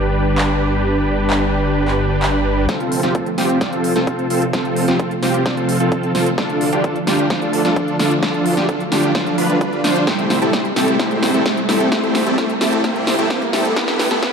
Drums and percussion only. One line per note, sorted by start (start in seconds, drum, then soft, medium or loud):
0.38 clap loud
1.30 clap loud
1.88 clap soft
2.22 clap loud
2.69 kick loud
2.69 snare soft
2.69 closed hi-hat medium
2.80 closed hi-hat soft
2.92 open hi-hat loud
3.03 snare soft
3.03 closed hi-hat medium
3.15 kick loud
3.15 closed hi-hat medium
3.26 closed hi-hat soft
3.38 snare soft
3.38 open hi-hat loud
3.49 closed hi-hat medium
3.61 kick loud
3.61 snare soft
3.61 closed hi-hat medium
3.73 closed hi-hat soft
3.84 open hi-hat loud
3.96 snare soft
3.96 closed hi-hat medium
4.07 kick loud
4.07 closed hi-hat medium
4.19 closed hi-hat soft
4.30 open hi-hat loud
4.42 closed hi-hat medium
4.53 kick loud
4.53 snare medium
4.53 closed hi-hat medium
4.65 closed hi-hat soft
4.76 open hi-hat loud
4.88 snare soft
4.88 closed hi-hat medium
4.99 kick loud
4.99 closed hi-hat soft
5.11 closed hi-hat soft
5.23 snare medium
5.23 open hi-hat loud
5.34 closed hi-hat medium
5.46 kick loud
5.46 snare medium
5.46 closed hi-hat medium
5.57 closed hi-hat soft
5.69 open hi-hat loud
5.80 closed hi-hat medium
5.92 kick loud
5.92 closed hi-hat medium
6.03 closed hi-hat soft
6.15 snare medium
6.15 open hi-hat loud
6.26 closed hi-hat medium
6.38 kick loud
6.38 snare medium
6.38 closed hi-hat soft
6.50 closed hi-hat soft
6.61 open hi-hat loud
6.73 closed hi-hat soft
6.84 kick loud
6.84 closed hi-hat medium
6.96 closed hi-hat soft
7.07 snare medium
7.07 open hi-hat loud
7.19 closed hi-hat medium
7.30 kick loud
7.30 snare medium
7.30 closed hi-hat soft
7.42 closed hi-hat soft
7.53 open hi-hat loud
7.65 snare medium
7.65 closed hi-hat soft
7.76 kick loud
7.76 closed hi-hat medium
7.88 closed hi-hat soft
7.99 snare medium
7.99 open hi-hat loud
8.11 closed hi-hat soft
8.23 kick loud
8.23 snare medium
8.23 closed hi-hat soft
8.34 closed hi-hat soft
8.46 open hi-hat loud
8.57 snare medium
8.69 kick loud
8.69 closed hi-hat soft
8.80 closed hi-hat soft
8.92 snare medium
8.92 open hi-hat loud
9.03 closed hi-hat medium
9.15 kick loud
9.15 snare medium
9.15 closed hi-hat soft
9.27 closed hi-hat soft
9.38 open hi-hat loud
9.50 closed hi-hat soft
9.61 kick loud
9.61 closed hi-hat soft
9.73 closed hi-hat soft
9.84 snare medium
9.84 open hi-hat loud
9.96 closed hi-hat soft
10.07 kick loud
10.07 snare medium
10.07 closed hi-hat medium
10.19 closed hi-hat soft
10.30 snare medium
10.30 open hi-hat loud
10.42 closed hi-hat soft
10.53 kick loud
10.53 snare medium
10.53 closed hi-hat soft
10.65 closed hi-hat soft
10.76 snare medium
10.76 open hi-hat loud
10.88 closed hi-hat medium
10.99 kick loud
10.99 snare medium
10.99 closed hi-hat soft
11.11 closed hi-hat soft
11.23 snare medium
11.23 open hi-hat loud
11.34 closed hi-hat soft
11.46 kick loud
11.46 snare medium
11.46 closed hi-hat medium
11.57 closed hi-hat soft
11.69 snare medium
11.69 open hi-hat loud
11.80 closed hi-hat soft
11.92 kick loud
11.92 snare medium
11.92 closed hi-hat medium
12.03 closed hi-hat soft
12.15 snare medium
12.15 open hi-hat loud
12.26 closed hi-hat medium
12.38 kick loud
12.38 snare medium
12.38 closed hi-hat medium
12.49 closed hi-hat soft
12.61 snare medium
12.61 open hi-hat loud
12.73 closed hi-hat medium
12.84 kick loud
12.84 snare medium
12.84 closed hi-hat medium
12.96 closed hi-hat soft
13.07 snare medium
13.07 open hi-hat loud
13.19 closed hi-hat medium
13.30 kick loud
13.30 snare medium
13.30 closed hi-hat medium
13.42 closed hi-hat soft
13.53 snare medium
13.53 open hi-hat loud
13.65 closed hi-hat medium
13.76 kick loud
13.76 snare medium
13.76 closed hi-hat medium
13.88 snare medium
13.88 closed hi-hat soft
14.00 snare medium
14.00 open hi-hat loud
14.11 snare medium
14.11 closed hi-hat medium
14.23 kick loud
14.23 snare medium
14.23 closed hi-hat medium